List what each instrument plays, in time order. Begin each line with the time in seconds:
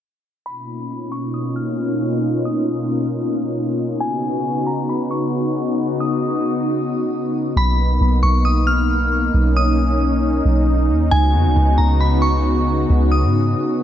0.45 analog synth pad B2 A#3 C#4 D#4 F4, synth bell B5
1.12 synth bell C#6
1.34 synth bell D#6
1.56 synth bell F6
2.45 synth bell D#6
4.00 analog synth pad C#3 B3 D#4 F#4, synth bell G#5
4.67 synth bell A#5
4.89 synth bell B5
5.11 synth bell C#6
6.00 synth bell D#6
7.56 808-style bass B1, analog synth pad A#3 B3 D#4, synth bell B5
8.00 808-style bass B1
8.22 808-style bass B1, synth bell C#6
8.45 synth bell D#6
8.67 synth bell F6
9.34 808-style bass B1, analog synth pad C#4
9.57 synth bell D#6
10.45 808-style bass B1
10.89 808-style bass D#2
11.11 808-style bass C#2, analog synth pad C#3 B3 F#4, synth bell G#5
11.34 808-style bass F2
11.45 808-style bass C#2
11.56 808-style bass C#2
11.78 808-style bass C#2, synth bell A#5
12.01 synth bell B5
12.22 synth bell C#6
12.89 808-style bass C#2
13.12 synth bell D#6
13.23 808-style bass G#2